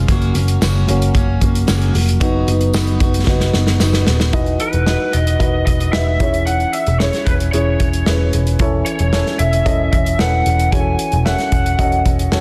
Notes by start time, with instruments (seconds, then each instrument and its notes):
0.08 picked electric bass F#1, steel-string acoustic guitar F#2 C#3 F#3 A#3 C#4 F#4, kick, closed hi-hat
0.22 closed hi-hat
0.34 picked electric bass F#1, steel-string acoustic guitar F#3 A#3 C#4 F#4, closed hi-hat
0.48 closed hi-hat
0.61 picked electric bass F#1, steel-string acoustic guitar F#2 C#3 F#3 A#3 C#4 F#4, snare, tambourine
0.87 picked electric bass F#1, upright piano F#3 A#3 C#4, steel-string acoustic guitar F#3 A#3 C#4 F#4, closed hi-hat
1.02 closed hi-hat
1.14 picked electric bass F#1, steel-string acoustic guitar F#3 A#3 C#4 F#4, kick, closed hi-hat
1.40 picked electric bass F#1, steel-string acoustic guitar F#3 A#3 C#4 F#4, kick, closed hi-hat
1.55 closed hi-hat
1.67 picked electric bass F#1, steel-string acoustic guitar F#2 C#3 F#3 A#3 C#4 F#4, snare, tambourine
1.82 closed hi-hat
1.93 picked electric bass F1, steel-string acoustic guitar F#3 A#3 C#4 F#4, open hi-hat
2.09 closed hi-hat
2.20 picked electric bass F#1, steel-string acoustic guitar F#3 B3 D#4 F#4, upright piano F#3 B3 D#4, kick, closed hi-hat
2.47 picked electric bass F#1, steel-string acoustic guitar B3 D#4 F#4, closed hi-hat
2.61 closed hi-hat
2.74 picked electric bass F#1, steel-string acoustic guitar F#3 B3 D#4 F#4, snare, tambourine
2.87 closed hi-hat
3.00 picked electric bass F#1, steel-string acoustic guitar B3 D#4 F#4, kick, closed hi-hat
3.14 closed hi-hat
3.27 picked electric bass F#1, steel-string acoustic guitar F#3 B3 D#4 F#4, upright piano F#3 B3 D#4, kick, snare
3.40 snare
3.53 picked electric bass F#1, steel-string acoustic guitar B3 D#4 F#4, snare
3.67 snare
3.80 picked electric bass F#1, steel-string acoustic guitar F#3 B3 D#4 F#4, snare, tambourine
3.93 snare
4.06 picked electric bass D#1, steel-string acoustic guitar B3 D#4 F#4, snare
4.20 snare
4.33 picked electric bass E1, upright piano E3 D#4 F#4 B4 D#5, kick, closed hi-hat
4.46 closed hi-hat
4.60 lead electric guitar B4, closed hi-hat
4.73 picked electric bass E1, closed hi-hat
4.86 upright piano D#4 F#4 B4 D#5, snare
5.13 picked electric bass E1, lead electric guitar D#5, closed hi-hat
5.27 closed hi-hat
5.39 picked electric bass E1, upright piano D#4 F#4 B4 D#5, kick, closed hi-hat
5.66 picked electric bass E1, lead electric guitar D#5, kick, closed hi-hat
5.80 closed hi-hat
5.92 picked electric bass E1, upright piano D#4 F#4 B4 D#5, lead electric guitar E5, snare
6.20 picked electric bass E1, upright piano E3 C#4 E4 G#4 C#5, kick, closed hi-hat
6.34 closed hi-hat
6.46 lead electric guitar F#5, closed hi-hat
6.60 closed hi-hat
6.73 lead electric guitar E5, closed hi-hat
6.87 picked electric bass E1, closed hi-hat
7.00 upright piano C#4 E4 G#4 C#5, lead electric guitar C#5, snare
7.13 snare, closed hi-hat
7.25 picked electric bass E1, lead electric guitar B4, kick, closed hi-hat
7.40 closed hi-hat
7.52 picked electric bass E1, upright piano C#4 E4 G#4 C#5, lead electric guitar C#5, closed hi-hat
7.80 picked electric bass E1, kick, closed hi-hat
7.93 closed hi-hat
8.06 picked electric bass E1, upright piano C#4 E4 G#4 B4, snare
8.33 picked electric bass E1, closed hi-hat
8.47 closed hi-hat
8.59 picked electric bass E1, upright piano E3 C#4 E4 A4 C#5, kick, closed hi-hat
8.86 lead electric guitar C#5, closed hi-hat
8.99 picked electric bass E1, closed hi-hat
9.13 upright piano C#4 E4 A4 C#5, snare
9.26 snare
9.39 picked electric bass E1, lead electric guitar E5, closed hi-hat
9.53 closed hi-hat
9.65 picked electric bass E1, upright piano C#4 E4 A4 D#5, kick, closed hi-hat
9.93 picked electric bass E1, lead electric guitar E5, kick, closed hi-hat
10.06 closed hi-hat
10.18 picked electric bass E1, upright piano C#4 E4 A4 B4, lead electric guitar F#5, snare
10.46 picked electric bass E1, closed hi-hat
10.59 closed hi-hat
10.72 picked electric bass E1, upright piano E3 C#4 F#4 G#4 C#5, lead electric guitar G#5, kick, closed hi-hat
10.79 upright piano A4
10.99 closed hi-hat
11.12 picked electric bass E1, closed hi-hat
11.25 upright piano C#4 F#4 A4 E5, lead electric guitar F#5, snare
11.38 snare, closed hi-hat
11.52 picked electric bass E1, kick, closed hi-hat
11.66 closed hi-hat
11.78 picked electric bass E1, upright piano C#4 F#4 A4 D#5, kick, closed hi-hat
11.92 closed hi-hat
12.06 picked electric bass E1, kick, closed hi-hat
12.19 closed hi-hat
12.32 picked electric bass E1, upright piano C#4 F#4 A4 C#5, snare